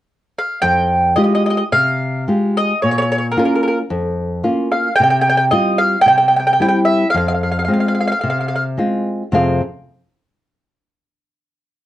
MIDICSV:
0, 0, Header, 1, 3, 480
1, 0, Start_track
1, 0, Key_signature, -4, "minor"
1, 0, Tempo, 548446
1, 543, Time_signature, 4, 2, 24, 8
1, 2944, Tempo, 541516
1, 10468, End_track
2, 0, Start_track
2, 0, Title_t, "Mandolin"
2, 0, Program_c, 0, 25
2, 337, Note_on_c, 0, 77, 66
2, 537, Note_off_c, 0, 77, 0
2, 540, Note_on_c, 0, 79, 80
2, 991, Note_off_c, 0, 79, 0
2, 1014, Note_on_c, 0, 75, 60
2, 1073, Note_off_c, 0, 75, 0
2, 1083, Note_on_c, 0, 75, 39
2, 1157, Note_off_c, 0, 75, 0
2, 1179, Note_on_c, 0, 75, 51
2, 1242, Note_off_c, 0, 75, 0
2, 1276, Note_on_c, 0, 75, 49
2, 1303, Note_off_c, 0, 75, 0
2, 1314, Note_on_c, 0, 75, 55
2, 1364, Note_off_c, 0, 75, 0
2, 1375, Note_on_c, 0, 75, 44
2, 1428, Note_off_c, 0, 75, 0
2, 1507, Note_on_c, 0, 77, 70
2, 1956, Note_off_c, 0, 77, 0
2, 2248, Note_on_c, 0, 75, 75
2, 2452, Note_off_c, 0, 75, 0
2, 2466, Note_on_c, 0, 73, 67
2, 2533, Note_off_c, 0, 73, 0
2, 2547, Note_on_c, 0, 73, 54
2, 2596, Note_off_c, 0, 73, 0
2, 2606, Note_on_c, 0, 73, 63
2, 2629, Note_off_c, 0, 73, 0
2, 2639, Note_on_c, 0, 73, 43
2, 2717, Note_off_c, 0, 73, 0
2, 2727, Note_on_c, 0, 73, 55
2, 2774, Note_off_c, 0, 73, 0
2, 2785, Note_on_c, 0, 73, 49
2, 2850, Note_off_c, 0, 73, 0
2, 2903, Note_on_c, 0, 70, 52
2, 2959, Note_off_c, 0, 70, 0
2, 2970, Note_on_c, 0, 70, 42
2, 3013, Note_off_c, 0, 70, 0
2, 3023, Note_on_c, 0, 70, 44
2, 3102, Note_off_c, 0, 70, 0
2, 3113, Note_on_c, 0, 70, 37
2, 3169, Note_off_c, 0, 70, 0
2, 3179, Note_on_c, 0, 70, 41
2, 3211, Note_off_c, 0, 70, 0
2, 3222, Note_on_c, 0, 70, 38
2, 3308, Note_off_c, 0, 70, 0
2, 4142, Note_on_c, 0, 77, 78
2, 4351, Note_off_c, 0, 77, 0
2, 4355, Note_on_c, 0, 79, 81
2, 4413, Note_off_c, 0, 79, 0
2, 4424, Note_on_c, 0, 79, 59
2, 4475, Note_off_c, 0, 79, 0
2, 4486, Note_on_c, 0, 79, 54
2, 4570, Note_off_c, 0, 79, 0
2, 4584, Note_on_c, 0, 79, 60
2, 4647, Note_off_c, 0, 79, 0
2, 4657, Note_on_c, 0, 79, 64
2, 4715, Note_off_c, 0, 79, 0
2, 4726, Note_on_c, 0, 79, 57
2, 4780, Note_off_c, 0, 79, 0
2, 4848, Note_on_c, 0, 75, 67
2, 5089, Note_on_c, 0, 77, 68
2, 5097, Note_off_c, 0, 75, 0
2, 5290, Note_off_c, 0, 77, 0
2, 5293, Note_on_c, 0, 79, 84
2, 5340, Note_off_c, 0, 79, 0
2, 5350, Note_on_c, 0, 79, 59
2, 5427, Note_off_c, 0, 79, 0
2, 5437, Note_on_c, 0, 79, 46
2, 5518, Note_off_c, 0, 79, 0
2, 5529, Note_on_c, 0, 79, 42
2, 5592, Note_off_c, 0, 79, 0
2, 5602, Note_on_c, 0, 79, 46
2, 5620, Note_off_c, 0, 79, 0
2, 5631, Note_on_c, 0, 79, 41
2, 5684, Note_off_c, 0, 79, 0
2, 5695, Note_on_c, 0, 79, 52
2, 5739, Note_off_c, 0, 79, 0
2, 5750, Note_on_c, 0, 79, 49
2, 5816, Note_off_c, 0, 79, 0
2, 5827, Note_on_c, 0, 79, 56
2, 5877, Note_off_c, 0, 79, 0
2, 5887, Note_on_c, 0, 79, 49
2, 5976, Note_off_c, 0, 79, 0
2, 6034, Note_on_c, 0, 76, 66
2, 6253, Note_off_c, 0, 76, 0
2, 6256, Note_on_c, 0, 77, 66
2, 6310, Note_off_c, 0, 77, 0
2, 6321, Note_on_c, 0, 77, 45
2, 6406, Note_off_c, 0, 77, 0
2, 6417, Note_on_c, 0, 77, 49
2, 6461, Note_off_c, 0, 77, 0
2, 6472, Note_on_c, 0, 77, 34
2, 6539, Note_off_c, 0, 77, 0
2, 6549, Note_on_c, 0, 77, 48
2, 6613, Note_off_c, 0, 77, 0
2, 6624, Note_on_c, 0, 77, 38
2, 6679, Note_off_c, 0, 77, 0
2, 6690, Note_on_c, 0, 77, 42
2, 6730, Note_off_c, 0, 77, 0
2, 6740, Note_on_c, 0, 77, 35
2, 6810, Note_off_c, 0, 77, 0
2, 6819, Note_on_c, 0, 77, 41
2, 6868, Note_off_c, 0, 77, 0
2, 6879, Note_on_c, 0, 77, 39
2, 6939, Note_off_c, 0, 77, 0
2, 6950, Note_on_c, 0, 77, 46
2, 6996, Note_off_c, 0, 77, 0
2, 7006, Note_on_c, 0, 77, 37
2, 7048, Note_off_c, 0, 77, 0
2, 7058, Note_on_c, 0, 77, 39
2, 7110, Note_off_c, 0, 77, 0
2, 7120, Note_on_c, 0, 77, 47
2, 7148, Note_off_c, 0, 77, 0
2, 7158, Note_on_c, 0, 77, 49
2, 7228, Note_off_c, 0, 77, 0
2, 7239, Note_on_c, 0, 77, 39
2, 7307, Note_off_c, 0, 77, 0
2, 7317, Note_on_c, 0, 77, 49
2, 7400, Note_off_c, 0, 77, 0
2, 7413, Note_on_c, 0, 77, 33
2, 7470, Note_off_c, 0, 77, 0
2, 7481, Note_on_c, 0, 77, 45
2, 7535, Note_off_c, 0, 77, 0
2, 7546, Note_on_c, 0, 77, 39
2, 7608, Note_off_c, 0, 77, 0
2, 10468, End_track
3, 0, Start_track
3, 0, Title_t, "Nylon-string guitar"
3, 0, Program_c, 1, 24
3, 548, Note_on_c, 1, 41, 61
3, 1015, Note_off_c, 1, 41, 0
3, 1021, Note_on_c, 1, 56, 36
3, 1027, Note_on_c, 1, 65, 32
3, 1033, Note_on_c, 1, 67, 41
3, 1409, Note_off_c, 1, 56, 0
3, 1414, Note_off_c, 1, 65, 0
3, 1415, Note_off_c, 1, 67, 0
3, 1506, Note_on_c, 1, 48, 53
3, 1975, Note_off_c, 1, 48, 0
3, 1992, Note_on_c, 1, 56, 36
3, 1995, Note_on_c, 1, 65, 32
3, 2001, Note_on_c, 1, 67, 36
3, 2375, Note_off_c, 1, 56, 0
3, 2377, Note_off_c, 1, 65, 0
3, 2379, Note_off_c, 1, 67, 0
3, 2477, Note_on_c, 1, 46, 52
3, 2935, Note_off_c, 1, 46, 0
3, 2949, Note_on_c, 1, 58, 35
3, 2955, Note_on_c, 1, 65, 44
3, 2956, Note_on_c, 1, 61, 36
3, 3332, Note_off_c, 1, 58, 0
3, 3335, Note_off_c, 1, 65, 0
3, 3337, Note_off_c, 1, 61, 0
3, 3422, Note_on_c, 1, 41, 53
3, 3890, Note_off_c, 1, 41, 0
3, 3893, Note_on_c, 1, 58, 33
3, 3896, Note_on_c, 1, 61, 31
3, 3897, Note_on_c, 1, 65, 39
3, 4281, Note_off_c, 1, 58, 0
3, 4282, Note_off_c, 1, 61, 0
3, 4282, Note_off_c, 1, 65, 0
3, 4392, Note_on_c, 1, 48, 57
3, 4851, Note_off_c, 1, 48, 0
3, 4853, Note_on_c, 1, 55, 39
3, 4855, Note_on_c, 1, 60, 35
3, 4863, Note_on_c, 1, 65, 40
3, 5240, Note_off_c, 1, 55, 0
3, 5240, Note_off_c, 1, 60, 0
3, 5246, Note_off_c, 1, 65, 0
3, 5333, Note_on_c, 1, 48, 53
3, 5801, Note_off_c, 1, 48, 0
3, 5811, Note_on_c, 1, 55, 39
3, 5815, Note_on_c, 1, 60, 30
3, 5822, Note_on_c, 1, 64, 41
3, 6196, Note_off_c, 1, 55, 0
3, 6199, Note_off_c, 1, 60, 0
3, 6203, Note_off_c, 1, 64, 0
3, 6293, Note_on_c, 1, 41, 57
3, 6759, Note_off_c, 1, 41, 0
3, 6770, Note_on_c, 1, 56, 35
3, 6774, Note_on_c, 1, 60, 35
3, 6775, Note_on_c, 1, 65, 41
3, 7157, Note_off_c, 1, 56, 0
3, 7158, Note_off_c, 1, 60, 0
3, 7159, Note_off_c, 1, 65, 0
3, 7261, Note_on_c, 1, 48, 51
3, 7730, Note_off_c, 1, 48, 0
3, 7742, Note_on_c, 1, 56, 30
3, 7749, Note_on_c, 1, 60, 36
3, 7754, Note_on_c, 1, 65, 35
3, 8132, Note_off_c, 1, 56, 0
3, 8136, Note_off_c, 1, 60, 0
3, 8137, Note_off_c, 1, 65, 0
3, 8222, Note_on_c, 1, 41, 48
3, 8225, Note_on_c, 1, 48, 43
3, 8233, Note_on_c, 1, 60, 42
3, 8237, Note_on_c, 1, 65, 39
3, 8242, Note_on_c, 1, 68, 36
3, 8246, Note_on_c, 1, 77, 52
3, 8470, Note_off_c, 1, 41, 0
3, 8471, Note_off_c, 1, 48, 0
3, 8476, Note_off_c, 1, 60, 0
3, 8478, Note_off_c, 1, 65, 0
3, 8479, Note_off_c, 1, 68, 0
3, 8483, Note_off_c, 1, 77, 0
3, 10468, End_track
0, 0, End_of_file